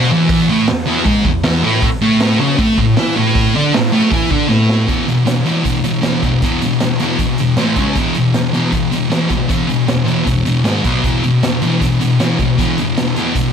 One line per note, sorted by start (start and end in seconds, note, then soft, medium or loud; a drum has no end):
0.00 0.10 B2 medium
0.00 0.11 B3 loud
0.10 0.48 E2 loud
0.10 0.49 E3 loud
0.29 kick loud
0.29 open hi-hat medium
0.48 0.67 A2 loud
0.48 0.68 A3 medium
0.67 0.83 E2 medium
0.67 snare loud
0.67 open hi-hat medium
0.86 1.05 E2 loud
0.86 1.06 E3 loud
1.06 1.25 G#2 loud
1.06 1.25 G#3 loud
1.06 kick loud
1.06 open hi-hat medium
1.25 1.41 E2 medium
1.25 kick loud
1.43 1.63 E2 medium
1.43 1.63 E3 loud
1.43 snare loud
1.43 open hi-hat medium
1.63 1.82 A2 medium
1.63 1.83 A3 loud
1.73 snare soft
1.82 kick loud
1.82 open hi-hat medium
2.02 2.39 A2 medium
2.02 2.40 A3 loud
2.20 snare loud
2.20 open hi-hat medium
2.40 2.58 C#3 loud
2.40 2.59 C#4 loud
2.58 2.77 A2 medium
2.58 2.78 A3 loud
2.58 kick loud
2.58 open hi-hat medium
2.78 2.94 A2 medium
2.78 kick medium
2.97 3.16 E3 loud
2.97 3.17 E4 loud
2.97 snare loud
2.97 open hi-hat medium
3.16 3.54 A2 loud
3.16 3.55 A3 loud
3.35 kick loud
3.35 open hi-hat medium
3.55 3.73 D3 medium
3.55 3.74 D4 loud
3.74 3.89 A2 medium
3.74 snare loud
3.74 open hi-hat medium
3.92 4.11 A2 loud
3.92 4.12 A3 loud
4.12 4.30 E3 medium
4.12 4.31 E4 loud
4.12 kick loud
4.12 open hi-hat medium
4.31 4.48 D3 medium
4.31 4.49 D4 loud
4.31 kick medium
4.49 4.87 A2 medium
4.49 4.88 A3 loud
4.49 snare medium
4.70 snare medium
4.87 5.06 E2 medium
4.87 5.06 B2 medium
4.87 5.07 E3 medium
4.87 kick loud
4.87 closed hi-hat medium
5.07 5.24 E2 medium
5.07 5.24 B2 medium
5.07 closed hi-hat medium
5.26 5.44 E2 medium
5.26 5.44 B2 medium
5.26 snare loud
5.26 closed hi-hat medium
5.46 5.64 E2 medium
5.46 5.65 B2 medium
5.46 5.65 E3 loud
5.46 closed hi-hat medium
5.65 5.82 E2 medium
5.65 5.83 B2 medium
5.65 kick medium
5.65 closed hi-hat medium
5.84 6.01 E2 medium
5.84 6.02 B2 medium
5.84 closed hi-hat medium
6.02 6.21 E2 medium
6.02 6.22 B2 medium
6.02 6.22 E3 loud
6.02 snare loud
6.02 closed hi-hat medium
6.23 6.41 E2 medium
6.23 6.41 B2 medium
6.23 kick medium
6.23 closed hi-hat medium
6.42 6.60 E2 medium
6.42 6.60 B2 medium
6.42 6.61 E3 medium
6.42 kick loud
6.42 closed hi-hat medium
6.61 6.79 E2 medium
6.61 6.79 B2 medium
6.61 closed hi-hat medium
6.80 6.98 E2 medium
6.80 6.98 B2 medium
6.80 snare loud
6.80 closed hi-hat medium
7.00 7.18 E2 medium
7.00 7.19 B2 loud
7.00 7.20 E3 loud
7.00 closed hi-hat medium
7.19 7.37 E2 medium
7.19 7.37 B2 medium
7.19 kick medium
7.19 closed hi-hat medium
7.38 7.57 E2 medium
7.38 7.57 B2 medium
7.38 closed hi-hat medium
7.57 7.76 A2 medium
7.57 7.77 E3 loud
7.57 7.77 A3 loud
7.57 snare medium
7.57 closed hi-hat medium
7.76 7.96 C#3 medium
7.76 7.96 G#3 loud
7.76 kick medium
7.76 closed hi-hat medium
7.80 7.97 C#4 medium
7.95 8.15 E2 medium
7.95 8.15 B2 medium
7.95 8.16 E3 medium
7.95 kick loud
7.95 closed hi-hat medium
8.14 8.33 E2 medium
8.14 8.33 B2 medium
8.14 closed hi-hat medium
8.34 8.52 E2 medium
8.34 8.53 B2 medium
8.34 snare loud
8.34 closed hi-hat medium
8.53 8.72 E2 medium
8.53 8.72 B2 medium
8.53 8.73 E3 loud
8.53 closed hi-hat medium
8.72 8.91 E2 medium
8.72 8.91 B2 medium
8.72 kick medium
8.72 closed hi-hat medium
8.92 9.09 E2 medium
8.92 9.10 B2 medium
8.92 closed hi-hat medium
9.11 9.28 E2 medium
9.11 9.28 B2 medium
9.11 9.30 E3 medium
9.11 snare loud
9.11 closed hi-hat medium
9.30 9.48 E2 medium
9.30 9.48 B2 medium
9.30 kick medium
9.30 closed hi-hat medium
9.49 9.67 E2 medium
9.49 9.67 B2 medium
9.49 9.69 E3 medium
9.49 kick loud
9.49 closed hi-hat medium
9.68 9.86 E2 medium
9.68 9.86 B2 medium
9.68 closed hi-hat medium
9.87 10.04 E2 medium
9.87 10.05 B2 medium
9.87 snare loud
9.87 closed hi-hat medium
10.06 10.23 E2 medium
10.06 10.24 B2 medium
10.06 10.26 E3 medium
10.06 closed hi-hat medium
10.25 10.43 E2 medium
10.25 10.43 B2 medium
10.25 kick medium
10.25 closed hi-hat medium
10.45 10.63 E2 medium
10.45 10.63 B2 medium
10.45 closed hi-hat medium
10.64 10.83 G#2 loud
10.64 10.84 D#3 medium
10.64 10.84 G#3 medium
10.64 snare loud
10.64 closed hi-hat medium
10.84 11.03 B2 medium
10.84 11.03 F#3 loud
10.84 11.04 B3 medium
10.84 kick medium
10.84 closed hi-hat medium
11.04 11.22 E2 medium
11.04 11.23 B2 medium
11.04 11.23 E3 medium
11.04 kick loud
11.04 closed hi-hat medium
11.23 11.41 E2 medium
11.23 11.41 B2 medium
11.23 closed hi-hat medium
11.43 11.60 E2 medium
11.43 11.60 B2 medium
11.43 snare loud
11.43 closed hi-hat medium
11.62 11.79 E2 medium
11.62 11.80 B2 loud
11.62 11.81 E3 loud
11.62 closed hi-hat medium
11.81 11.98 E2 medium
11.81 11.98 B2 medium
11.81 kick medium
11.81 closed hi-hat medium
12.01 12.18 E2 medium
12.01 12.18 B2 medium
12.01 closed hi-hat medium
12.19 12.37 E2 medium
12.19 12.38 B2 medium
12.19 12.38 E3 medium
12.19 snare loud
12.19 closed hi-hat medium
12.39 12.56 E2 medium
12.39 12.56 B2 medium
12.39 kick medium
12.39 closed hi-hat medium
12.58 12.76 E2 medium
12.58 12.77 B2 medium
12.58 12.77 E3 medium
12.58 kick medium
12.58 closed hi-hat medium
12.78 12.95 E2 medium
12.78 12.95 B2 medium
12.78 closed hi-hat medium
12.97 13.14 E2 medium
12.97 13.14 B2 medium
12.97 snare loud
12.97 closed hi-hat medium
13.16 13.34 E2 medium
13.16 13.35 B2 medium
13.16 13.35 E3 medium
13.16 closed hi-hat medium
13.35 13.53 E2 medium
13.35 13.53 B2 medium
13.35 kick medium
13.35 closed hi-hat medium